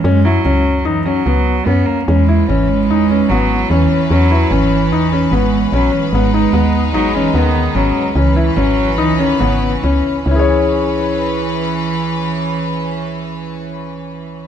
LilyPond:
<<
  \new Staff \with { instrumentName = "Felt piano" } { \time 5/4 \key cis \minor \tempo 4 = 147 cis'8 e'8 cis'4 dis'8 cis'8 b4 cis'4 | cis'8 e'8 cis'4 dis'8 cis'8 b4 cis'4 | cis'8 e'8 cis'4 dis'8 cis'8 b4 cis'4 | b8 dis'8 b4 dis'8 cis'8 b4 cis'4 |
cis'8 e'8 cis'4 dis'8 cis'8 b4 cis'4 | <cis' e' gis' cis''>1~ <cis' e' gis' cis''>4~ | <cis' e' gis' cis''>1~ <cis' e' gis' cis''>4 | }
  \new Staff \with { instrumentName = "String section" } { \time 5/4 \key cis \minor << { r1 r4 | b'1~ b'4~ | b'1~ b'4~ | b'1~ b'4 |
b'1~ b'4 | <e cis' b'>1~ <e cis' b'>4~ | <e cis' b'>1~ <e cis' b'>4 | } \\ { r1 r4 | <e cis'>1~ <e cis'>4~ | <e cis'>1~ <e cis'>4 | <gis dis'>1~ <gis dis'>4 |
<e cis'>1~ <e cis'>4 | r1 r4 | r1 r4 | } >> }
  \new Staff \with { instrumentName = "Cello" } { \clef bass \time 5/4 \key cis \minor gis8 fis4. e8 fis4. b8 ais8 | gis4 e8 gis4. fis4 e4 | fis4 e2 gis4 fis8 e8 | gis2 fis16. fis32 e8 dis4 fis4 |
e4 fis4 e8 dis8 cis4. r8 | e1~ e4~ | e1~ e4 | }
  \new Staff \with { instrumentName = "FM bass" } { \clef bass \time 5/4 \key cis \minor fis,4 cis,4 fis,4 cis,4 fis,8 r8 | e,4 gis,,4 e,4 gis,,4 e,8 r8 | e,4 gis,,4 e,4 gis,,4 ais,,8 r8 | gis,,4 dis,4 gis,,4 dis,4 gis,,8 r8 |
cis,4 gis,,4 cis,4 gis,,4 cis,8 r8 | cis,1~ cis,4~ | cis,1~ cis,4 | }
>>